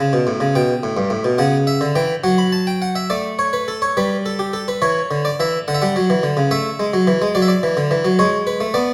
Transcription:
harpsichord
Already playing: A5
0.00 C#3
0.13 B2
0.27 A2
0.40 C#3
0.55 B2 G5
0.83 A2
0.97 G2
1.10 A2
1.24 B2
1.38 C#3 F#5
1.67 E5
1.81 D3
1.96 E3 G5
2.24 F#3 F#5
2.38 B5
2.52 A5
2.67 G5
2.82 F#5
2.95 E5
3.10 A3 D5
3.39 C#5
3.53 B4
3.68 A4
3.82 C#5
3.97 G3 B4
4.26 A4
4.39 G4
4.53 A4
4.68 B4
4.82 E3 C#5
5.11 D3
5.25 D5
5.40 E3 E5
5.68 D3 F#5
5.75 E5
5.82 G3 F#5
5.96 F#3
6.10 E3
6.23 D3
6.37 C#3
6.51 A3 E5
6.80 G#3
6.94 F#3
7.07 E3
7.22 G#3
7.35 F#3 D5
7.42 E5
7.48 D5
7.63 E3
7.77 D3
7.91 E3
8.05 F#3
8.19 G#3 C#5
8.47 B4
8.61 A3
8.74 B3 D5

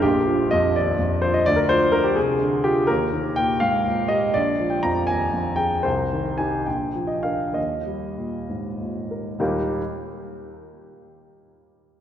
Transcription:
grand piano
0.02 A#1 G4
0.27 F3
0.51 F2 D#5
0.76 D#2 D5
0.99 F2
1.22 F4 C5
1.34 D#5
1.46 D2 D5
1.56 A#4
1.69 F3 C5
1.92 D3 A#4
2.04 G4
2.16 C3 G#4
2.41 D3
2.64 F4 G4
2.87 D#2 A#4
3.13 D#3
3.36 A#2 G5
3.60 G#2 F5
3.86 A#2
4.08 G4 D#5
4.34 A#1 D5
4.60 F3
4.70 G5
4.83 F2 A#5
5.07 D#2 G#5
5.33 F2
5.56 G#4 G5
5.83 C2 C5
6.13 D#3
6.38 D#4 G4 G#5
6.66 A#1 G5
6.95 F3
7.07 D#5
7.23 D4 A#4 F5
7.53 D#2 D#5
7.87 G3
8.18 A#2
8.49 G#2
8.80 A#2
9.11 A#4
9.39 D#2 A#2 G3 A#3 D#4 G4

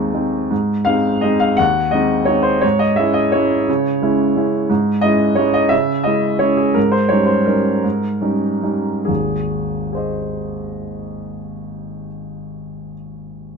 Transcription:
grand piano
Already playing: D#2 G#3 C4 D#4 G#4
0.14 G#3 C4 D#4
0.51 G#2
0.85 G#3 C4 D#4 F5
1.21 G#3 C4 D#4 D#5
1.40 F5
1.57 D#2 F#5
1.91 G#3 C4 D#4 D#5
2.25 G#3 C4 D#4 C#5
2.43 C5
2.61 G#2 C#5
2.79 D#5
2.96 G#3 C#4 E4 E5
3.14 D#5
3.32 G#3 C#4 E4 C#5
3.69 C#3
4.02 G#3 C#4 E4
4.36 G#3 C#4 E4
4.70 G#2
5.01 G#3 C#4 E4 D#5
5.35 G#3 C#4 E4 C#5
5.54 D#5
5.69 C#3 E5
6.04 G#3 C#4 E4 D#5
6.39 G#3 C#4 E4 C#5
6.57 G#4
6.74 G#2 A#4
6.92 C5
7.09 G3 C#4 D#4 C#5
7.26 C5
7.45 G3 C#4 D#4 A#4
7.84 G#2
8.21 G3 C#4 D#4
8.63 G3 C#4 D#4
9.05 G#1 D#2 G#4
9.92 G#4 C5
9.96 D#5

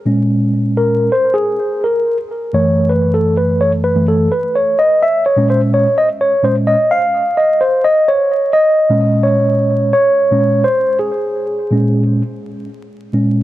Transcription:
tine electric piano
0.05 A#2 G#3 C#4
0.77 A#4
1.12 C5
1.34 G#4
1.84 A#4
2.53 F#2 E3 A3 C#5
2.89 B4
3.14 A4
3.37 B4
3.61 C#5
3.84 B4
3.96 F#2 E3 A3
4.08 A4
4.32 B4
4.55 C#5
4.79 D#5
5.02 E5
5.26 C#5
5.36 A#2 G#3 C#4
5.50 C5
5.74 C#5
5.98 D#5
6.21 C#5
6.43 A#2 G#3 C#4 C5
6.67 D#5
6.91 F5
7.37 D#5
7.61 C5
7.84 D#5
8.08 C#5
8.53 D#5
8.90 A#2 G#3 C#4
9.23 C#5
9.93 C#5
10.31 A#2 G#3 C#4
10.64 C5
10.99 G#4
11.71 A#2 G#3 C#4
13.13 A#2 G#3 C#4

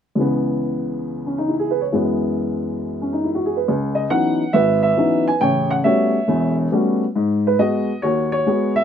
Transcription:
upright piano
0.15 C#2 C#3 E3
0.20 B3
1.26 C#4
1.38 D#4
1.48 E4
1.59 G#4
1.71 B4
1.81 C#5
1.92 F#2 E3 G#3 B3
3.02 C#4
3.13 D#4
3.24 E4
3.35 F#4
3.46 G#4
3.57 B4
3.68 C#2
3.95 D#5
4.10 E3 F#3 B3 C#4 D#4 F#5
4.53 G#1 B4 E5
4.83 E5
4.97 E3 F#3 B3 C#4 D#4
5.27 G#5
5.41 A1 C#3 C#5 G5
5.70 F#5
5.84 G3 A3 B3 C#4 F#4 C#5 E5
6.28 E1 E2
6.72 G3 A3 B3 C#4 F#4
7.16 G#2
7.47 B4
7.59 G#3 B3 F#4 D#5
8.02 D#2 F#4 C#5
8.32 C#5
8.46 G#3 B3 F#4
8.76 E5

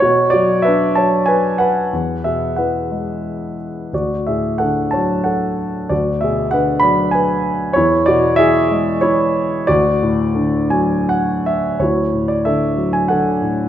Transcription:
grand piano
0.00 B2 F#4 C#5
0.30 F#4 D5
0.35 F#3
0.62 D4 B4 E5
0.95 F#3 C#5 A5
1.26 B4 G#5
1.58 B4 F#5
1.93 E2
2.24 B2 G#4 E5
2.56 E3 B4 F#5
2.91 G#3
3.93 D2 F#4 D5
4.27 A2 G#4 E5
4.58 D3 A4 F#5
4.91 C#5 A5
4.95 F#3
5.24 A4 F#5
5.89 D2 F#4 D5
6.21 B2 G#4 E5
6.51 D3 B4 F#5
6.80 F#3 D5 B5
7.11 B4 G#5
7.73 E2 E4 C#5
8.06 B2 F#4 D5
8.36 E3 G#4 E5
8.71 G#3
9.01 E4 C#5
9.67 D2 F#4 D5
10.03 A2
10.35 D3
10.70 F#3 G#5
11.09 F#5
11.46 E5
11.79 D2 E4 F#4 C#5
12.13 A2
12.28 D5
12.45 D3 A4 E5
12.77 F#3
12.93 G#5
13.08 D3 A4 F#5
13.42 A2

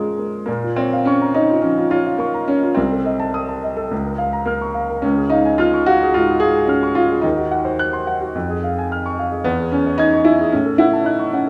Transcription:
grand piano
Already playing: A#2 F3 G#3 A#3 C#4 F4 A#4 C5 F5 A#5 C6
0.18 A#3
0.46 A#2 A#3
0.64 F4
0.76 C4 C#5
0.93 F5
1.05 C#4 C#6
1.22 A#5
1.34 D#4 C#5
1.50 F4
1.62 F3 C#4
1.78 F4
1.91 F4 C#5
2.06 F5
2.18 A#3 C#6
2.34 A#5
2.48 C#4 C#5
2.63 F4
2.75 C2 C4
2.92 A4
3.05 D#5
3.20 A5
3.34 D#6
3.49 A5
3.63 D#5
3.77 A4
3.91 C#2
4.05 A#4
4.18 F5
4.33 A#5
4.46 A#3 F6
4.62 C#6
4.74 F5
4.89 A#4
5.02 C#2 C#4
5.17 G#4
5.30 D#4 F5
5.45 G#5
5.58 F4 F6
5.74 C#6
5.86 F#4 F5
6.03 G#4
6.14 G#2 F4
6.29 G#4
6.40 G#4 F5
6.55 G#5
6.67 C#4 F6
6.83 C#6
6.95 F4 F5
7.11 G#4
7.22 D#2 D#4
7.37 F#4
7.51 F#5
7.65 C5
7.79 F#6
7.93 C6
8.07 F#5
8.21 F#4
8.35 F2
8.50 G#4
8.64 F5
8.78 G#5
8.92 F6
9.06 C#6
9.19 F5
9.32 G#4
9.44 E2 B3
9.60 G#4
9.72 C#4 G#5
9.87 C#5
9.98 D#4 G#6
10.13 C#6
10.25 E4 G#5
10.40 G#4
10.52 A2 C#4
10.66 A4
10.78 E4 F#5
10.93 A5
11.04 D#4 F#6
11.19 C#6
11.33 C#4 F#5

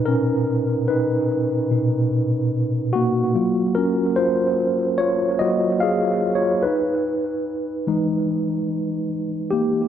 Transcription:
tine electric piano
Already playing: A#2 B2 D#4 B4
0.06 C#4 A#4
0.88 D#4 B4
1.71 A#2 B2 D#4
2.93 A#3 F#4
3.35 F#3 A#3 F4
3.75 C#4 A#4
4.16 F4 C5
4.98 F4 C#5
5.39 F#3 A#3 F4 F#4 D#5
5.80 G#4 F5
6.35 F4 C#5
6.63 D#4 B4
7.87 E3 G#3 D#4
9.51 A#3 G4

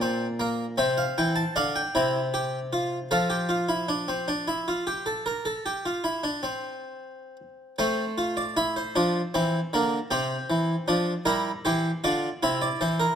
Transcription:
harpsichord
Already playing: A#2 D5
0.01 C4
0.40 A#3
0.78 C3 C4 E5
0.98 F5
1.18 E3 G5
1.36 A5
1.56 D3 D4 F5
1.76 G5
1.95 C3 E4
2.34 G4
2.73 F4
3.11 F3 A4 F5
3.30 G4
3.49 F4
3.69 E4
3.88 D4
4.08 C4
4.28 D4
4.48 E4
4.68 F4
4.87 G4
5.06 A4
5.26 A#4
5.45 A4
5.66 G4
5.85 F4
6.04 E4
6.23 D4
6.43 C4
7.79 A3 C4 C5
8.18 F4
8.37 D5
8.57 E4 E5
8.76 C5
8.96 F3 D4
9.34 E3 C4
9.73 D3 A#3
10.11 C3 C4 G4
10.50 E3
10.88 F3 D4
11.25 G3 E4 A#4
11.65 E3 G4 C5
12.04 D3 F4 D5
12.43 C3 E4 E5
12.62 D5
12.81 E3 C5
13.00 A#4

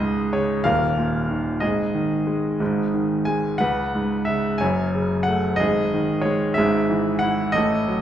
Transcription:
grand piano
Already playing: C#2 G#4 D#5
0.00 G#2
0.33 C#3 C#5
0.64 D#1 D#2 A#4 F5
0.98 A#2
1.30 D#3
1.60 G#1 G#2 G#4 D#5
1.95 D#3
2.27 G#3
2.60 G#1 G#2
2.94 D#3
3.25 G#3 G#5
3.58 C#2 B4 F#5
3.95 G#2
4.25 C#3 E5
4.58 F#1 F#2 C#5 G#5
4.94 C#3
5.23 F#5
5.28 A3
5.56 G#4 D#5
5.60 G#1 G#2
5.94 D#3
6.22 G#3 C#5
6.54 G#1 G#2 G#4 E5
6.89 E3
7.19 E4 F#5
7.52 A1 A2 D#5
7.56 A4
7.88 F#3

